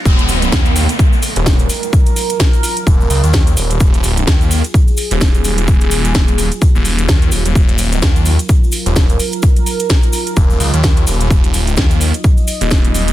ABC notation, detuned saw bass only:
X:1
M:4/4
L:1/16
Q:"Swing 16ths" 1/4=128
K:Ebm
V:1 name="Detuned saw bass" clef=bass
E,,,4 E,,3 z4 E,,,3 z2 | z8 E,,,2 D,, E,,3 E,,,2 | E,,,4 E,,3 z4 E,,,3 E,,,2- | E,,, E,,,3 E,,,3 z2 E,,,3 E,,2 E,,, E,,, |
E,,,4 E,,3 z4 E,,,3 z2 | z8 E,,,2 D,, E,,3 E,,,2 | E,,,4 E,,3 z4 E,,,3 E,,,2 |]